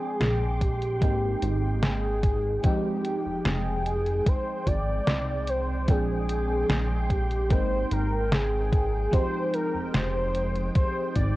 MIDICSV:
0, 0, Header, 1, 6, 480
1, 0, Start_track
1, 0, Tempo, 810811
1, 1565, Time_signature, 4, 2, 24, 8
1, 6726, End_track
2, 0, Start_track
2, 0, Title_t, "String machine"
2, 0, Program_c, 0, 50
2, 0, Note_on_c, 0, 56, 72
2, 0, Note_on_c, 0, 79, 69
2, 0, Note_on_c, 0, 84, 69
2, 0, Note_on_c, 0, 86, 83
2, 593, Note_off_c, 0, 79, 0
2, 593, Note_off_c, 0, 86, 0
2, 601, Note_on_c, 0, 79, 70
2, 1544, Note_off_c, 0, 84, 0
2, 3487, Note_on_c, 0, 84, 71
2, 3487, Note_on_c, 0, 86, 82
2, 4420, Note_off_c, 0, 56, 0
2, 4436, Note_off_c, 0, 86, 0
2, 4443, Note_on_c, 0, 56, 78
2, 5387, Note_off_c, 0, 84, 0
2, 6726, Note_off_c, 0, 56, 0
2, 6726, Note_off_c, 0, 79, 0
2, 6726, End_track
3, 0, Start_track
3, 0, Title_t, "Soft synth lead"
3, 0, Program_c, 1, 80
3, 0, Note_on_c, 1, 68, 97
3, 371, Note_on_c, 1, 67, 92
3, 380, Note_off_c, 1, 68, 0
3, 1086, Note_off_c, 1, 67, 0
3, 1090, Note_on_c, 1, 68, 88
3, 1564, Note_on_c, 1, 67, 90
3, 1573, Note_off_c, 1, 68, 0
3, 2049, Note_on_c, 1, 68, 96
3, 2058, Note_off_c, 1, 67, 0
3, 2532, Note_on_c, 1, 72, 99
3, 2541, Note_off_c, 1, 68, 0
3, 2766, Note_on_c, 1, 74, 110
3, 2775, Note_off_c, 1, 72, 0
3, 3253, Note_on_c, 1, 72, 94
3, 3261, Note_off_c, 1, 74, 0
3, 3495, Note_on_c, 1, 68, 100
3, 3504, Note_off_c, 1, 72, 0
3, 4210, Note_on_c, 1, 67, 91
3, 4219, Note_off_c, 1, 68, 0
3, 4450, Note_on_c, 1, 72, 105
3, 4458, Note_off_c, 1, 67, 0
3, 4690, Note_on_c, 1, 70, 94
3, 4699, Note_off_c, 1, 72, 0
3, 4932, Note_on_c, 1, 68, 93
3, 4941, Note_off_c, 1, 70, 0
3, 5403, Note_off_c, 1, 68, 0
3, 5406, Note_on_c, 1, 72, 108
3, 5645, Note_on_c, 1, 70, 97
3, 5654, Note_off_c, 1, 72, 0
3, 5885, Note_off_c, 1, 70, 0
3, 5888, Note_on_c, 1, 72, 105
3, 6343, Note_off_c, 1, 72, 0
3, 6370, Note_on_c, 1, 72, 104
3, 6591, Note_off_c, 1, 72, 0
3, 6607, Note_on_c, 1, 74, 118
3, 6726, Note_off_c, 1, 74, 0
3, 6726, End_track
4, 0, Start_track
4, 0, Title_t, "FM electric piano"
4, 0, Program_c, 2, 5
4, 0, Control_c, 2, 64, 127
4, 0, Note_on_c, 2, 53, 72
4, 0, Note_on_c, 2, 56, 69
4, 0, Note_on_c, 2, 60, 69
4, 0, Note_on_c, 2, 62, 67
4, 0, Note_on_c, 2, 79, 82
4, 553, Note_off_c, 2, 53, 0
4, 555, Note_off_c, 2, 56, 0
4, 557, Note_off_c, 2, 60, 0
4, 559, Note_off_c, 2, 62, 0
4, 562, Note_off_c, 2, 79, 0
4, 595, Note_on_c, 2, 56, 74
4, 599, Note_on_c, 2, 58, 69
4, 604, Note_on_c, 2, 60, 70
4, 610, Note_on_c, 2, 63, 68
4, 612, Control_c, 2, 64, 0
4, 613, Note_on_c, 2, 79, 81
4, 726, Control_c, 2, 64, 127
4, 1513, Note_off_c, 2, 56, 0
4, 1515, Note_off_c, 2, 58, 0
4, 1517, Note_off_c, 2, 60, 0
4, 1520, Note_off_c, 2, 63, 0
4, 1522, Note_off_c, 2, 79, 0
4, 1556, Note_on_c, 2, 53, 85
4, 1559, Note_on_c, 2, 56, 80
4, 1563, Note_on_c, 2, 60, 80
4, 1568, Note_on_c, 2, 63, 83
4, 1572, Control_c, 2, 64, 0
4, 1573, Note_on_c, 2, 79, 92
4, 1663, Control_c, 2, 64, 127
4, 3433, Note_off_c, 2, 53, 0
4, 3435, Note_off_c, 2, 56, 0
4, 3437, Note_off_c, 2, 60, 0
4, 3439, Note_off_c, 2, 63, 0
4, 3442, Note_off_c, 2, 79, 0
4, 3478, Note_on_c, 2, 53, 80
4, 3481, Note_on_c, 2, 56, 71
4, 3485, Note_on_c, 2, 60, 69
4, 3491, Note_on_c, 2, 62, 72
4, 3494, Control_c, 2, 64, 0
4, 3495, Note_on_c, 2, 79, 88
4, 3597, Control_c, 2, 64, 127
4, 4394, Note_off_c, 2, 53, 0
4, 4396, Note_off_c, 2, 56, 0
4, 4398, Note_off_c, 2, 60, 0
4, 4401, Note_off_c, 2, 62, 0
4, 4403, Note_off_c, 2, 79, 0
4, 4437, Note_on_c, 2, 56, 75
4, 4442, Note_on_c, 2, 58, 67
4, 4447, Note_on_c, 2, 60, 68
4, 4451, Note_on_c, 2, 63, 69
4, 4452, Control_c, 2, 64, 0
4, 4455, Note_on_c, 2, 79, 80
4, 4571, Control_c, 2, 64, 127
4, 5354, Note_off_c, 2, 56, 0
4, 5356, Note_off_c, 2, 58, 0
4, 5359, Note_off_c, 2, 60, 0
4, 5361, Note_off_c, 2, 63, 0
4, 5363, Note_off_c, 2, 79, 0
4, 5393, Note_on_c, 2, 53, 87
4, 5398, Note_on_c, 2, 56, 79
4, 5401, Note_on_c, 2, 60, 80
4, 5407, Note_on_c, 2, 63, 82
4, 5411, Note_on_c, 2, 67, 98
4, 5412, Control_c, 2, 64, 0
4, 5518, Control_c, 2, 64, 127
4, 6726, Note_off_c, 2, 53, 0
4, 6726, Note_off_c, 2, 56, 0
4, 6726, Note_off_c, 2, 60, 0
4, 6726, Note_off_c, 2, 63, 0
4, 6726, Note_off_c, 2, 67, 0
4, 6726, End_track
5, 0, Start_track
5, 0, Title_t, "Analog synth bass"
5, 0, Program_c, 3, 38
5, 121, Note_on_c, 3, 34, 96
5, 602, Note_on_c, 3, 32, 99
5, 611, Note_off_c, 3, 34, 0
5, 804, Note_off_c, 3, 32, 0
5, 844, Note_on_c, 3, 32, 94
5, 1533, Note_off_c, 3, 32, 0
5, 1927, Note_on_c, 3, 29, 43
5, 2021, Note_off_c, 3, 29, 0
5, 2045, Note_on_c, 3, 29, 98
5, 2494, Note_off_c, 3, 29, 0
5, 2762, Note_on_c, 3, 32, 89
5, 2964, Note_off_c, 3, 32, 0
5, 3005, Note_on_c, 3, 36, 82
5, 3483, Note_on_c, 3, 34, 81
5, 3492, Note_off_c, 3, 36, 0
5, 3933, Note_off_c, 3, 34, 0
5, 3962, Note_on_c, 3, 34, 91
5, 4444, Note_on_c, 3, 32, 99
5, 4453, Note_off_c, 3, 34, 0
5, 4645, Note_off_c, 3, 32, 0
5, 4686, Note_on_c, 3, 32, 95
5, 5374, Note_off_c, 3, 32, 0
5, 5766, Note_on_c, 3, 29, 43
5, 5861, Note_off_c, 3, 29, 0
5, 5885, Note_on_c, 3, 29, 96
5, 6334, Note_off_c, 3, 29, 0
5, 6605, Note_on_c, 3, 32, 91
5, 6726, Note_off_c, 3, 32, 0
5, 6726, End_track
6, 0, Start_track
6, 0, Title_t, "Drums"
6, 123, Note_on_c, 9, 38, 104
6, 123, Note_on_c, 9, 42, 74
6, 182, Note_off_c, 9, 38, 0
6, 182, Note_off_c, 9, 42, 0
6, 363, Note_on_c, 9, 36, 60
6, 363, Note_on_c, 9, 42, 63
6, 422, Note_off_c, 9, 36, 0
6, 422, Note_off_c, 9, 42, 0
6, 485, Note_on_c, 9, 42, 36
6, 545, Note_off_c, 9, 42, 0
6, 602, Note_on_c, 9, 42, 78
6, 603, Note_on_c, 9, 36, 115
6, 662, Note_off_c, 9, 36, 0
6, 662, Note_off_c, 9, 42, 0
6, 843, Note_on_c, 9, 42, 65
6, 902, Note_off_c, 9, 42, 0
6, 1083, Note_on_c, 9, 38, 116
6, 1083, Note_on_c, 9, 42, 79
6, 1142, Note_off_c, 9, 38, 0
6, 1142, Note_off_c, 9, 42, 0
6, 1323, Note_on_c, 9, 36, 96
6, 1323, Note_on_c, 9, 42, 63
6, 1382, Note_off_c, 9, 36, 0
6, 1382, Note_off_c, 9, 42, 0
6, 1561, Note_on_c, 9, 42, 72
6, 1563, Note_on_c, 9, 36, 115
6, 1621, Note_off_c, 9, 42, 0
6, 1623, Note_off_c, 9, 36, 0
6, 1803, Note_on_c, 9, 42, 65
6, 1862, Note_off_c, 9, 42, 0
6, 2043, Note_on_c, 9, 38, 113
6, 2043, Note_on_c, 9, 42, 75
6, 2102, Note_off_c, 9, 38, 0
6, 2102, Note_off_c, 9, 42, 0
6, 2284, Note_on_c, 9, 42, 63
6, 2343, Note_off_c, 9, 42, 0
6, 2404, Note_on_c, 9, 42, 35
6, 2463, Note_off_c, 9, 42, 0
6, 2523, Note_on_c, 9, 36, 115
6, 2523, Note_on_c, 9, 42, 75
6, 2583, Note_off_c, 9, 36, 0
6, 2583, Note_off_c, 9, 42, 0
6, 2763, Note_on_c, 9, 36, 57
6, 2764, Note_on_c, 9, 42, 64
6, 2823, Note_off_c, 9, 36, 0
6, 2823, Note_off_c, 9, 42, 0
6, 3003, Note_on_c, 9, 38, 121
6, 3003, Note_on_c, 9, 42, 77
6, 3063, Note_off_c, 9, 38, 0
6, 3063, Note_off_c, 9, 42, 0
6, 3242, Note_on_c, 9, 42, 64
6, 3301, Note_off_c, 9, 42, 0
6, 3481, Note_on_c, 9, 42, 74
6, 3483, Note_on_c, 9, 36, 113
6, 3541, Note_off_c, 9, 42, 0
6, 3542, Note_off_c, 9, 36, 0
6, 3724, Note_on_c, 9, 42, 65
6, 3784, Note_off_c, 9, 42, 0
6, 3964, Note_on_c, 9, 38, 114
6, 3964, Note_on_c, 9, 42, 76
6, 4023, Note_off_c, 9, 38, 0
6, 4023, Note_off_c, 9, 42, 0
6, 4204, Note_on_c, 9, 36, 65
6, 4205, Note_on_c, 9, 42, 65
6, 4263, Note_off_c, 9, 36, 0
6, 4264, Note_off_c, 9, 42, 0
6, 4328, Note_on_c, 9, 42, 35
6, 4387, Note_off_c, 9, 42, 0
6, 4443, Note_on_c, 9, 42, 78
6, 4444, Note_on_c, 9, 36, 117
6, 4502, Note_off_c, 9, 42, 0
6, 4504, Note_off_c, 9, 36, 0
6, 4685, Note_on_c, 9, 42, 65
6, 4744, Note_off_c, 9, 42, 0
6, 4925, Note_on_c, 9, 38, 125
6, 4925, Note_on_c, 9, 42, 81
6, 4984, Note_off_c, 9, 38, 0
6, 4984, Note_off_c, 9, 42, 0
6, 5165, Note_on_c, 9, 36, 108
6, 5166, Note_on_c, 9, 42, 64
6, 5224, Note_off_c, 9, 36, 0
6, 5225, Note_off_c, 9, 42, 0
6, 5405, Note_on_c, 9, 36, 115
6, 5405, Note_on_c, 9, 42, 69
6, 5464, Note_off_c, 9, 36, 0
6, 5464, Note_off_c, 9, 42, 0
6, 5645, Note_on_c, 9, 42, 63
6, 5704, Note_off_c, 9, 42, 0
6, 5884, Note_on_c, 9, 38, 108
6, 5884, Note_on_c, 9, 42, 72
6, 5943, Note_off_c, 9, 38, 0
6, 5943, Note_off_c, 9, 42, 0
6, 6123, Note_on_c, 9, 42, 61
6, 6182, Note_off_c, 9, 42, 0
6, 6247, Note_on_c, 9, 42, 36
6, 6306, Note_off_c, 9, 42, 0
6, 6364, Note_on_c, 9, 42, 73
6, 6366, Note_on_c, 9, 36, 116
6, 6423, Note_off_c, 9, 42, 0
6, 6425, Note_off_c, 9, 36, 0
6, 6604, Note_on_c, 9, 42, 60
6, 6606, Note_on_c, 9, 36, 58
6, 6664, Note_off_c, 9, 42, 0
6, 6665, Note_off_c, 9, 36, 0
6, 6726, End_track
0, 0, End_of_file